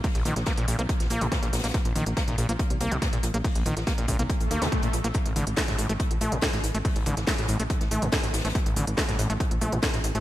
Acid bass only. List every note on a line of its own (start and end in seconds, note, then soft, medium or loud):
0.04 0.08 A#2 medium
0.15 0.24 A#1 medium
0.25 0.34 D#3 loud
0.47 0.53 A#3 medium
0.57 0.66 A#2 loud
0.68 0.77 A#2 medium
0.79 0.82 A#3 medium
1.10 1.23 A#3 medium
1.21 1.27 A#2 medium
1.32 1.38 A#2 medium
1.43 1.48 A#2 medium
1.64 1.67 A#3 medium
1.74 1.78 A#2 medium
1.85 1.94 A#1 medium
1.96 2.05 D#3 loud
2.17 2.23 A#3 medium
2.28 2.36 A#2 loud
2.38 2.47 A#2 medium
2.49 2.52 A#3 medium
2.81 2.93 A#3 medium
2.92 2.97 A#2 medium
3.02 3.08 A#2 medium
3.13 3.19 A#2 medium
3.34 3.38 A#3 medium
3.44 3.48 A#2 medium
3.55 3.64 A#1 medium
3.66 3.75 D#3 loud
3.87 3.93 A#3 medium
3.98 4.06 A#2 loud
4.08 4.17 A#2 medium
4.19 4.23 A#3 medium
4.51 4.63 A#3 medium
4.62 4.67 A#2 medium
4.72 4.78 A#2 medium
4.83 4.89 A#2 medium
5.04 5.08 A#3 medium
5.15 5.18 A2 medium
5.26 5.34 A1 medium
5.36 5.45 D3 loud
5.57 5.63 A3 medium
5.68 5.77 A2 loud
5.79 5.88 A2 medium
5.89 5.93 A3 medium
6.21 6.34 A3 medium
6.32 6.38 A2 medium
6.42 6.48 A2 medium
6.53 6.59 A2 medium
6.75 6.78 A3 medium
6.85 6.89 A2 medium
6.96 7.04 A1 medium
7.06 7.15 D3 loud
7.27 7.33 A3 medium
7.38 7.47 A2 loud
7.49 7.58 A2 medium
7.60 7.63 A3 medium
7.91 8.04 A3 medium
8.02 8.08 A2 medium
8.13 8.19 A2 medium
8.23 8.29 A2 medium
8.45 8.48 A3 medium
8.55 8.59 A2 medium
8.66 8.75 A1 medium
8.76 8.85 D3 loud
8.98 9.04 A3 medium
9.09 9.17 A2 loud
9.19 9.28 A2 medium
9.30 9.33 A3 medium
9.61 9.74 A3 medium
9.72 9.78 A2 medium
9.83 9.89 A2 medium
9.94 9.99 A2 medium
10.15 10.18 A3 medium